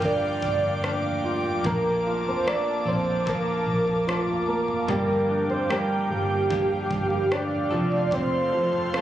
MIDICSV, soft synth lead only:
0, 0, Header, 1, 2, 480
1, 0, Start_track
1, 0, Key_signature, -2, "major"
1, 0, Tempo, 810811
1, 972, Time_signature, 4, 2, 24, 8
1, 5335, End_track
2, 0, Start_track
2, 0, Title_t, "Soft synth lead"
2, 0, Program_c, 0, 80
2, 29, Note_on_c, 0, 74, 91
2, 741, Note_off_c, 0, 74, 0
2, 989, Note_on_c, 0, 70, 93
2, 1352, Note_on_c, 0, 72, 87
2, 1361, Note_off_c, 0, 70, 0
2, 1469, Note_on_c, 0, 74, 101
2, 1478, Note_off_c, 0, 72, 0
2, 1705, Note_on_c, 0, 72, 86
2, 1714, Note_off_c, 0, 74, 0
2, 1948, Note_on_c, 0, 70, 83
2, 1957, Note_off_c, 0, 72, 0
2, 2660, Note_off_c, 0, 70, 0
2, 2909, Note_on_c, 0, 70, 94
2, 3237, Note_off_c, 0, 70, 0
2, 3257, Note_on_c, 0, 72, 83
2, 3381, Note_on_c, 0, 70, 88
2, 3390, Note_off_c, 0, 72, 0
2, 3611, Note_on_c, 0, 67, 98
2, 3620, Note_off_c, 0, 70, 0
2, 4335, Note_on_c, 0, 74, 99
2, 4343, Note_off_c, 0, 67, 0
2, 4822, Note_on_c, 0, 72, 107
2, 4831, Note_off_c, 0, 74, 0
2, 5297, Note_off_c, 0, 72, 0
2, 5306, Note_on_c, 0, 69, 88
2, 5335, Note_off_c, 0, 69, 0
2, 5335, End_track
0, 0, End_of_file